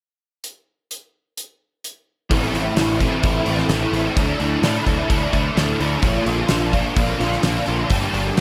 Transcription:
0.44 closed hi-hat soft
0.91 closed hi-hat medium
1.37 closed hi-hat medium
1.84 closed hi-hat medium
2.30 2.46 A1 medium
2.30 2.76 A2 medium
2.30 2.77 E3 medium
2.30 2.56 A3 medium
2.30 2.54 C4 medium
2.30 2.53 E4 medium
2.30 kick loud
2.30 open hi-hat medium
2.52 2.68 A1 medium
2.52 2.78 A3 medium
2.52 2.78 C4 medium
2.52 2.79 E4 medium
2.52 open hi-hat soft
2.76 3.07 A1 medium
2.76 3.24 E3 medium
2.76 3.02 A3 medium
2.76 3.01 C4 medium
2.76 3.00 E4 medium
2.76 snare loud
2.76 open hi-hat medium
3.00 3.23 A3 medium
3.00 3.24 C4 medium
3.00 3.24 E4 medium
3.00 kick medium
3.00 open hi-hat soft
3.23 3.39 A1 medium
3.23 3.70 A2 medium
3.23 3.69 E3 medium
3.23 3.49 A3 medium
3.23 3.48 C4 medium
3.23 3.46 E4 medium
3.23 kick loud
3.23 open hi-hat medium
3.46 3.62 A1 medium
3.46 3.71 C4 medium
3.46 3.72 E4 medium
3.46 open hi-hat soft
3.50 3.70 A3 medium
3.58 snare soft
3.68 3.84 A1 medium
3.68 4.15 E3 medium
3.68 3.94 A3 medium
3.68 3.93 C4 medium
3.68 snare loud
3.68 open hi-hat medium
3.73 3.91 E4 medium
3.92 4.08 A1 medium
3.92 4.16 A3 soft
3.92 4.16 C4 medium
3.92 4.15 E4 medium
3.92 open hi-hat soft
4.16 4.32 D2 medium
4.16 4.61 D3 medium
4.16 4.41 A3 medium
4.16 4.40 D4 loud
4.16 4.38 E4 medium
4.16 kick medium
4.16 open hi-hat medium
4.39 4.55 D2 medium
4.39 4.62 A3 medium
4.39 4.64 D4 medium
4.39 4.64 E4 medium
4.39 open hi-hat soft
4.62 4.78 A2 medium
4.62 5.07 D3 medium
4.62 4.87 A3 medium
4.62 4.86 D4 medium
4.62 4.84 E4 medium
4.62 snare loud
4.62 open hi-hat medium
4.85 5.02 D2 medium
4.85 5.07 A3 medium
4.85 5.09 D4 medium
4.85 5.09 E4 medium
4.85 kick medium
4.85 open hi-hat soft
5.08 5.25 D2 medium
5.08 5.54 D3 medium
5.08 5.33 A3 medium
5.08 5.32 D4 medium
5.08 5.30 E4 medium
5.08 kick loud
5.08 open hi-hat medium
5.31 5.48 D2 medium
5.31 5.55 A3 medium
5.31 5.56 D4 medium
5.31 5.57 E4 medium
5.31 kick medium
5.31 open hi-hat soft
5.55 5.72 D2 medium
5.55 6.01 D3 medium
5.55 5.81 A3 medium
5.55 5.80 D4 medium
5.55 5.78 E4 medium
5.55 snare loud
5.55 open hi-hat medium
5.79 5.95 D2 medium
5.79 6.03 A3 medium
5.79 6.03 D4 medium
5.79 6.02 E4 medium
5.79 open hi-hat soft
6.01 6.18 A#1 medium
6.01 6.49 A#2 medium
6.01 6.47 D3 medium
6.01 6.27 A#3 medium
6.01 6.27 D4 loud
6.01 6.24 F4 loud
6.01 kick medium
6.01 open hi-hat medium
6.25 6.42 A#1 medium
6.25 6.50 A#3 medium
6.25 6.51 D4 medium
6.25 6.51 F4 medium
6.25 open hi-hat soft
6.48 6.81 A#1 medium
6.48 6.96 D3 medium
6.48 6.74 A#3 medium
6.48 6.73 D4 medium
6.48 6.71 F4 medium
6.48 snare loud
6.48 open hi-hat medium
6.72 6.96 A#3 medium
6.72 6.96 D4 medium
6.72 6.97 F4 medium
6.72 kick medium
6.72 open hi-hat soft
6.96 7.12 A#1 medium
6.96 7.43 A#2 medium
6.96 7.42 D3 medium
6.96 7.20 A#3 medium
6.96 7.19 D4 medium
6.96 7.18 F4 medium
6.96 kick loud
6.96 open hi-hat medium
7.19 7.36 A#1 medium
7.19 7.43 A#3 medium
7.19 7.44 D4 medium
7.19 7.44 F4 medium
7.19 open hi-hat soft
7.32 snare soft
7.43 7.59 A#1 medium
7.43 7.88 D3 medium
7.43 7.68 A#3 medium
7.43 7.67 D4 medium
7.43 7.66 F4 medium
7.43 snare loud
7.43 open hi-hat medium
7.66 7.83 A#1 medium
7.66 7.89 A#3 medium
7.66 7.89 D4 medium
7.66 7.89 F4 medium
7.66 open hi-hat soft
7.89 8.06 G1 medium
7.89 8.36 G2 medium
7.89 8.37 D3 medium
7.89 8.14 G3 medium
7.89 8.13 A#3 medium
7.89 8.12 D4 loud
7.89 8.12 G4 loud
7.89 kick medium
7.89 open hi-hat medium
8.13 8.29 G1 medium
8.13 8.34 G3 medium
8.13 8.36 A#3 medium
8.13 8.36 D4 medium
8.13 8.37 G4 medium
8.13 open hi-hat medium
8.35 8.40 G3 medium
8.35 8.40 A#3 medium
8.35 open hi-hat medium

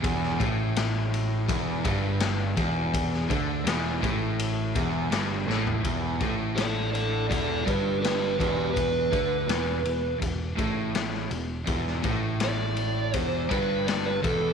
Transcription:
0.02 0.37 E1 medium
0.02 0.38 E2 loud
0.02 kick loud
0.02 ride medium
0.23 snare soft
0.39 1.45 A1 medium
0.39 1.47 A2 loud
0.39 kick loud
0.39 ride medium
0.76 snare loud
0.76 ride loud
1.14 ride medium
1.48 1.82 E1 medium
1.48 1.84 E2 loud
1.48 kick loud
1.48 ride medium
1.84 2.53 G1 loud
1.84 2.56 G2 loud
1.84 kick loud
1.84 ride medium
2.20 snare loud
2.20 ride loud
2.56 3.26 E1 medium
2.56 3.28 E2 loud
2.56 kick loud
2.56 ride medium
2.94 kick loud
2.94 ride medium
3.13 snare soft
3.29 3.64 D2 medium
3.29 3.65 D3 loud
3.29 kick loud
3.29 ride medium
3.65 3.99 E1 medium
3.65 4.01 E2 loud
3.65 snare loud
3.65 ride loud
4.01 4.71 A1 medium
4.01 4.74 A2 loud
4.01 kick loud
4.01 ride medium
4.39 ride medium
4.75 5.09 E1 medium
4.75 5.11 E2 loud
4.75 kick loud
4.75 ride medium
5.11 5.45 G1 medium
5.11 5.47 G2 loud
5.11 snare loud
5.11 ride loud
5.46 5.81 A1 medium
5.46 5.83 A2 loud
5.46 snare medium
5.67 floor tom medium
5.83 6.18 E1 medium
5.83 6.19 E2 medium
5.83 kick medium
5.83 ride medium
6.20 7.26 A1 medium
6.20 7.29 A2 loud
6.20 kick loud
6.20 ride medium
6.56 6.92 A4 medium
6.56 6.92 D5 medium
6.56 snare loud
6.56 ride medium
6.93 7.27 A4 medium
6.93 7.29 D5 medium
6.93 ride medium
7.29 7.64 E1 medium
7.29 7.65 E2 medium
7.29 7.64 A4 medium
7.29 7.65 D5 medium
7.29 kick loud
7.29 ride loud
7.65 8.36 G1 medium
7.65 8.38 G2 medium
7.65 8.00 G4 medium
7.65 8.01 B4 medium
7.65 kick loud
7.65 ride medium
8.01 8.36 G4 medium
8.01 8.38 B4 medium
8.01 ride medium
8.05 snare loud
8.39 9.09 E1 medium
8.39 9.11 E2 loud
8.39 8.73 G4 medium
8.39 8.72 B4 medium
8.39 kick loud
8.39 ride medium
8.73 10.16 B4 medium
8.73 kick medium
8.73 ride medium
9.11 9.46 D2 medium
9.11 9.47 D3 loud
9.11 kick loud
9.11 ride medium
9.47 9.82 E1 medium
9.47 9.82 E2 loud
9.47 snare loud
9.47 ride loud
9.84 10.19 E1 medium
9.84 10.14 E2 medium
9.84 ride medium
10.20 10.56 E1 medium
10.20 10.50 E2 medium
10.20 kick medium
10.20 ride medium
10.57 11.27 A1 medium
10.57 11.30 A2 medium
10.57 kick loud
10.57 ride medium
10.95 snare loud
10.95 ride medium
11.14 snare soft
11.30 11.65 E1 medium
11.30 11.60 E2 medium
11.30 ride medium
11.67 12.02 E1 medium
11.67 12.03 E2 loud
11.67 kick loud
11.67 ride medium
11.87 snare soft
12.03 13.10 A1 medium
12.03 13.12 A2 loud
12.03 kick loud
12.03 ride medium
12.40 13.15 D5 medium
12.40 snare loud
12.40 ride medium
12.76 ride medium
13.13 13.48 E1 medium
13.13 13.49 E2 medium
13.13 13.48 C5 medium
13.13 kick loud
13.13 ride medium
13.49 14.20 G1 medium
13.49 14.21 G2 medium
13.49 13.86 B4 medium
13.49 kick loud
13.49 ride medium
13.87 14.04 D5 medium
13.87 snare loud
13.87 ride loud
14.06 14.23 B4 medium
14.23 14.53 E1 medium
14.23 14.53 E2 loud
14.23 14.53 A4 medium
14.23 kick loud
14.23 ride medium

